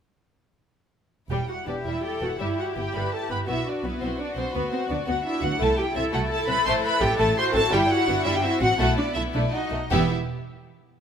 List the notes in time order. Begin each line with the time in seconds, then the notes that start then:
1.30 E1 G3 E4 G4 G5
1.48 F#4 F#5
1.66 E1 B3 D4 G4 D5
1.85 E1 G3 E4 E5
2.03 G4 A4 G5
2.21 E1 B3 F#4 F#5
2.40 G1 G3 E4 G4 E5
2.58 F#4 F#5
2.76 G1 B3 G4 G5
2.94 G1 G3 B4 B5
3.13 A4 A5
3.29 G1 B3 B4 B5
3.47 B1 B3 E4 F#4 E5
3.66 D4 D5
3.83 B1 B3 E4 B4
4.01 B1 B3 C4 C5
4.18 D4 D5
4.37 B1 B3 C4 C5
4.54 D2 B3 F#4 B4
4.71 C4 C5
4.89 D2 B3 D4 D5
5.07 D2 B3 F#4 F#5
5.24 D4 E4 E5
5.42 D2 B3 F#4 F#5
5.60 C2 A3 E4 A4 A5
5.78 G4 G5
5.96 C2 C4 E4 A4 E5
6.13 C2 A3 F#4 F#5
6.30 A4 A5
6.47 C2 C4 B4 B5
6.66 A1 A3 C5 C6
6.84 B4 B5
7.00 A1 C4 G4 G5
7.18 A1 A3 A4 A5
7.36 F#4 C5 C6
7.53 A1 C4 A4 A5
7.71 G1 G3 E4 G4 G5
7.89 F#4 F#5
8.07 G1 B3 D4
8.24 G1 G3 E4 E5
8.34 G4 G5
8.42 C4 E4 F#4 E5
8.60 A1 C4 F#4 F#5
8.78 B1 A3 B3 E4 F#4 F#5
8.97 D4 D5
9.14 B1 A3 E4 E5
9.33 B1 A3 D4 D5
9.52 D#4 F#4 D#5
9.71 B1 A3
9.91 E1 E2 B3 E4 G4 E5